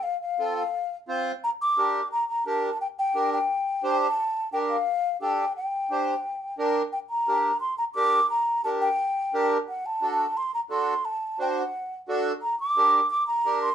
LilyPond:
<<
  \new Staff \with { instrumentName = "Flute" } { \time 4/4 \key g \minor \tempo 4 = 174 f''8 f''4 f''4 r4. | bes''8 d'''4. bes''8 bes''8 a''4 | g''8 g''4 g''2 a''8~ | a''4 g''8 f''4. g''4 |
g''2. r4 | g''8 bes''4. c'''8 bes''8 d'''4 | bes''4 a''8 g''2 r8 | fis''8 a''4. c'''8 bes''8 c'''4 |
a''4 g''8 fis''4 r4. | bes''8 d'''4. d'''8 bes''4 c'''8 | }
  \new Staff \with { instrumentName = "Accordion" } { \time 4/4 \key g \minor r4 <c' f' a'>8 r4. <c' f' c''>8 r8 | r4 <d' g' bes'>8 r4. <d' g' bes'>8 r8 | r4 <d' g' bes'>8 r4. <d' g' c''>8 r8 | r4 <d' g' bes'>8 r4. <d' g' a'>8 r8 |
r4 <d' g' c''>8 r4. <d' g' bes'>8 r8 | r4 <d' g' bes'>8 r4. <d' g' bes'>8 r8 | r4 <d' g' bes'>8 r4. <d' g' bes'>8 r8 | r4 <d' fis' a'>8 r4. <d' fis' a'>8 r8 |
r4 <d' fis' c''>8 r4. <d' fis' a'>8 r8 | r4 <d' g' bes'>8 r4. <d' g' bes'>8 r8 | }
>>